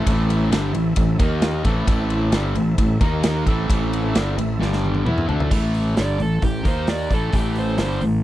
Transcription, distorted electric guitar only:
0.06 0.51 A2 medium
0.06 0.51 E3 loud
0.06 0.51 A3 loud
0.50 0.73 G2 medium
0.50 0.73 D3 medium
0.50 0.74 G3 medium
0.74 0.92 A2 medium
0.74 0.92 E3 medium
0.97 1.15 A2 medium
0.97 1.15 E3 medium
1.19 1.64 D#3 medium
1.19 1.65 A#3 medium
1.19 1.65 D#4 loud
1.64 1.86 A2 medium
1.64 1.87 E3 loud
1.64 1.88 A3 loud
1.88 2.32 A2 loud
1.88 2.33 E3 loud
1.88 2.33 A3 loud
2.32 2.55 G2 medium
2.32 2.55 D3 loud
2.32 2.56 G3 loud
2.56 2.74 A2 medium
2.56 2.74 E3 medium
2.79 2.97 A2 medium
2.79 2.97 E3 medium
3.01 3.46 D#3 medium
3.01 3.46 A#3 medium
3.01 3.47 D#4 medium
3.47 3.68 A2 medium
3.47 3.69 E3 medium
3.47 3.69 A3 medium
3.69 4.14 A2 medium
3.69 4.15 E3 loud
3.69 4.15 A3 loud
4.15 4.37 G2 medium
4.15 4.36 D3 medium
4.15 4.37 G3 loud
4.37 4.55 A2 medium
4.37 4.56 E3 medium
4.60 5.05 G2 medium
4.60 5.05 D3 medium
4.60 5.05 G3 loud
5.05 5.27 E3 medium
5.05 5.28 B3 medium
5.05 5.28 E4 loud
5.27 5.50 D3 medium
5.27 5.51 A3 medium
5.27 5.51 D4 loud
5.51 5.95 A2 medium
5.51 5.96 E3 medium
5.51 5.97 A3 loud
5.95 6.18 G2 medium
5.95 6.19 D3 medium
5.95 6.19 G3 medium
6.19 6.38 A2 medium
6.19 6.38 E3 medium
6.42 6.61 A2 medium
6.42 6.61 E3 medium
6.64 7.10 D#3 medium
6.64 7.10 A#3 medium
6.64 7.10 D#4 medium
7.10 7.32 A2 medium
7.10 7.33 E3 medium
7.10 7.34 A3 medium
7.34 7.79 A2 medium
7.34 7.79 E3 medium
7.34 7.80 A3 loud
7.79 8.01 G2 medium
7.79 8.02 D3 medium
7.79 8.02 G3 medium
8.03 8.21 A2 medium
8.03 8.21 E3 medium

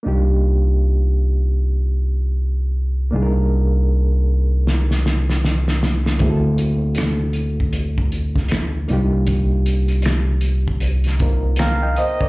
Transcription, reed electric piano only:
0.03 3.08 A#3 medium
0.03 3.08 D4 medium
0.03 3.09 D#4 medium
0.03 3.09 F4 medium
0.08 3.10 G4 medium
3.11 6.15 A#3 medium
3.11 6.16 D4 medium
3.11 6.17 D#4 medium
3.11 6.17 F4 medium
3.16 3.22 G#4 medium
3.22 6.21 A#4 medium
6.18 8.84 A#3 medium
6.18 8.85 C4 medium
6.18 8.86 E4 medium
6.18 8.86 F#4 medium
6.23 6.30 G#4 medium
6.30 8.90 A4 medium
8.88 11.15 A#3 medium
8.88 11.16 D4 medium
8.88 11.17 D#4 medium
8.88 11.17 F4 medium
8.93 11.18 G4 medium
11.20 12.29 A#3 soft
11.20 12.29 C4 soft
11.20 12.29 D#4 soft
11.20 12.29 F4 soft
11.20 11.60 A#4 medium
11.59 11.82 G5 soft
11.59 11.81 A#5 medium
11.83 11.96 D#5 soft
11.83 11.97 G5 medium
11.98 12.20 C5 medium
11.98 12.20 D#5 medium
12.21 12.29 A#4 soft
12.21 12.29 D5 medium

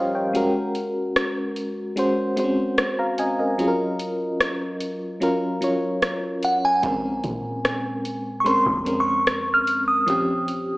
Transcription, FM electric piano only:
0.00 0.36 F3 medium
0.00 0.37 G3 medium
0.00 0.34 C#4 medium
0.00 0.36 F4 medium
0.00 0.36 G4 medium
0.00 0.37 A#4 medium
0.00 0.37 C5 loud
0.00 0.15 C#5 medium
0.00 0.37 D#5 medium
0.00 0.36 F5 medium
0.00 0.15 G5 medium
0.00 0.37 A#5 medium
0.15 0.53 C#5 medium
0.15 0.53 G5 medium
0.33 1.55 G#3 medium
0.33 1.56 C#4 medium
0.33 1.56 F#4 medium
0.33 1.57 A#4 medium
1.96 2.27 G#3 medium
1.96 2.27 C#4 medium
1.96 2.28 F#4 medium
1.96 2.28 C5 loud
2.37 3.28 G#3 medium
2.37 2.44 C4 medium
2.37 3.29 F#4 medium
2.37 2.79 C5 medium
2.44 3.32 C#4 medium
2.99 3.18 F5 medium
2.99 3.18 A#5 medium
3.19 3.38 D#5 medium
3.19 3.38 G#5 medium
3.39 3.67 A#4 medium
3.39 3.78 D#5 medium
3.58 4.80 F#3 medium
3.58 4.80 C#4 medium
3.58 4.81 F4 medium
3.58 3.67 G#4 medium
3.68 4.84 A#4 medium
5.20 5.51 F#3 medium
5.20 5.51 C#4 medium
5.20 5.52 F4 medium
5.20 5.52 A#4 medium
5.61 6.52 F#3 medium
5.61 6.53 C#4 medium
5.61 6.53 F4 medium
5.61 6.54 C#5 medium
6.83 8.04 G#3 medium
6.83 8.04 C4 medium
6.83 8.05 C#4 medium
6.83 8.06 A#4 medium
8.44 8.75 G#3 medium
8.44 8.76 C4 medium
8.44 8.76 C#4 medium
8.44 8.77 A#4 medium
8.85 9.76 G#3 medium
8.85 9.77 C4 medium
8.85 9.77 C#4 medium
8.85 9.78 A#4 medium
10.06 10.78 F3 medium
10.06 10.78 C4 medium
10.06 10.78 C#4 medium
10.06 10.78 G4 medium

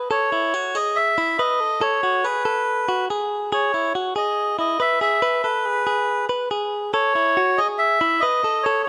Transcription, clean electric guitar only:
0.11 0.32 A4 loud
0.32 0.54 E4 medium
0.54 0.75 F#4 medium
0.75 1.15 G#4 medium
1.18 1.39 E4 medium
1.39 1.60 B4 medium
1.60 1.80 A4 medium
1.81 2.03 A4 loud
2.03 2.24 F#4 medium
2.24 2.45 G#4 medium
2.45 2.86 A4 medium
2.88 3.10 F#4 medium
3.10 3.50 G#4 loud
3.52 3.74 G#4 loud
3.74 3.95 E4 medium
3.95 4.15 F#4 medium
4.16 4.56 G#4 medium
4.59 4.79 E4 medium
4.80 5.01 B4 medium
5.01 5.22 G#4 medium
5.22 5.44 B4 loud
5.44 5.65 A4 medium
5.65 5.85 G#4 medium
5.87 6.27 G#4 medium
6.29 6.51 B4 medium
6.51 6.91 G#4 medium
6.94 7.15 A4 loud
7.15 7.37 E4 medium
7.37 7.58 F#4 medium
7.58 7.98 G#4 medium
8.01 8.22 E4 medium
8.23 8.44 B4 medium
8.44 8.65 A4 medium
8.66 8.87 A4 loud

